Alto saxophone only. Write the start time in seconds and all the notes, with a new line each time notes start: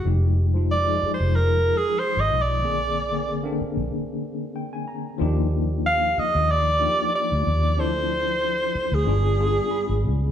0.71 D5
1.14 C5
1.36 A#4
1.77 G#4
1.99 C5
2.20 D#5
2.42 D5
5.86 F5
6.19 D#5
6.51 D5
7.15 D5
7.80 C5
8.94 G#4